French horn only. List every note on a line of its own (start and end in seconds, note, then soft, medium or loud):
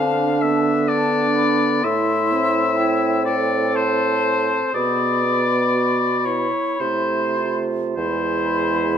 0.00 0.41 C4 medium
0.42 1.87 B3 medium
1.85 2.33 A3 medium
2.32 4.75 C4 medium
4.75 5.24 B3 medium
5.26 6.48 B3 medium
6.82 7.93 A3 soft
7.97 8.98 G#3 soft